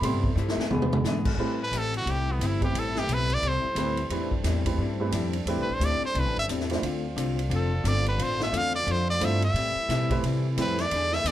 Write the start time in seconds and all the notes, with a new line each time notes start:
Already playing: E4
0.01 A2 C3 G3 A3 B3 E4 G4 C5 C6, ride
0.13 G2
0.24 E2, kick
0.36 G2 A3 E4 G4 C5, hi-hat pedal
0.48 snare
0.57 muted upright bass stroke, snare
0.69 E2 D3 E3 G#3 B3 D4, mid tom
0.74 G#4
0.82 mid tom
0.93 mid tom
1.04 G#2 E3 B3 D4 G#4, snare, hi-hat pedal
1.25 kick, crash
1.37 A2 G3 A3 C4 E4 G4 B4
1.63 B4
1.71 A1 A2 G3 C4 E4, hi-hat pedal, ride
1.78 A4
1.94 F#4, ride
2.06 C2 A2 G3 C4 E4, ride
2.11 G4
2.32 B3
2.39 G1 A2 G3 C4, hi-hat pedal, ride
2.43 E4
2.61 A3 C4 E4 G4 B4, kick, ride
2.73 A1 A2, ride
2.77 G3 C4 E4 A4
2.96 G4, snare
3.07 B1 A2 G3, hi-hat pedal, ride
3.11 C4 E4 B4
3.30 ride
3.34 D5
3.42 C2 A2 G3 C4, ride
3.47 E4 C5
3.64 muted upright bass stroke
3.75 D2 A2 G3 A3 C4 E4 G4 B4, hi-hat pedal, ride
3.79 E4
3.97 ride
4.09 E2 A2 G3 A3 C4 D4 E4 G4 B4, ride
4.14 E4
4.31 kick
4.44 E2 A2 G3 C4 E4, snare, hi-hat pedal, ride
4.65 A3 C4 E4 G4 B4, kick, ride
4.78 G2 A2 G3 C4
4.82 E4
5.00 A3 C4 E4 G4 B4
5.12 F2 A2 G3 C4 E4, hi-hat pedal, ride
5.33 ride
5.46 E2 A2 G3 A3 C4 E4 G4 B4, ride
5.50 E4
5.57 C2
5.62 B4
5.69 A1
5.74 C5
5.80 D2 A2 G3 C4 E4, hi-hat pedal, ride
5.85 D5
6.01 muted upright bass stroke
6.05 C5
6.14 C2 A2 G3 C4 E4, ride
6.19 B4
6.26 A1
6.37 G1 E5
6.48 E2 A2 G3 C4 E4, hi-hat pedal, ride
6.60 snare
6.70 A3 D4 E4 F4 C5, snare, ride
6.82 D2 D3 A3 C4 D4 F4, ride
7.16 C2 D3 A3 C4 F4, hi-hat pedal, ride
7.39 ride
7.49 F1 D3 A3 C4 F4, ride
7.55 A4
7.83 G1 D3 A3 C4 F4, hi-hat pedal, ride
7.88 D5
8.06 B4, ride
8.17 A1 D3 A3 C4 F4, ride
8.23 C5
8.40 E5, snare
8.52 E2 D3 A3 C4 F4, hi-hat pedal, ride
8.57 F5
8.75 D5
8.86 F2 D3 A3 C4 F4, ride
8.91 C5
9.10 D5
9.20 G2 D3 A3 C4 D4 E4 F4 C5, hi-hat pedal, ride
9.25 E5
9.42 E5, ride
9.54 A2 E3 G3 C4 E4, ride
9.75 muted upright bass stroke
9.88 A2 B2 G3 C4 E4, snare, hi-hat pedal, ride
10.10 A3 C4 E4 G4 B4, kick, ride
10.23 A2 C3 G3 C4, ride
10.27 E4
10.56 F2 A2 G3 A3 C4 E4 G4 C5, hi-hat pedal, ride
10.61 B4
10.78 D5, snare, ride
10.90 E2 D3 E3 G#3 B3 D4 E4, ride
10.95 G#4
11.12 E5, snare
11.24 D#2 E3 B3 D4 G#4 D5, hi-hat pedal, ride